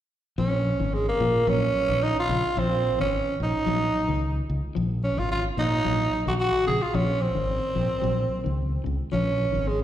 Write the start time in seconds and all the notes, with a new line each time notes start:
0.38 A#1 F3 C#4
0.79 G#1 D#3
0.94 G#3
1.09 A#3
1.20 A#2 F3
1.47 A#1 F#3 C#4
1.89 A#1 D#3
2.04 D#4
2.19 F4
2.29 A#1 C#3
2.57 A#1 F3 C4
2.99 G#1 D#3 C#4
3.40 A#1 D#4
3.66 A#1 F#3
4.08 C#2 D#3
4.49 C#2
4.75 A#1 F3
5.04 C#4
5.17 G#1 D#3 F4
5.31 F4
5.57 A#2 F3 D#4
5.84 A#1 F#3
6.26 A#1 D#3 F#4
6.40 F#4
6.67 A#1 C#3 G#4
6.82 F4
6.94 A#1 F3 C#4
7.21 C4
7.35 G#1 D#3
7.75 A#1 F3
8.02 A#1 F#3
8.44 C#2 D#3
8.84 C#2 C#3
9.12 A#1 F3 C#4
9.52 G#1 D#3
9.68 G#3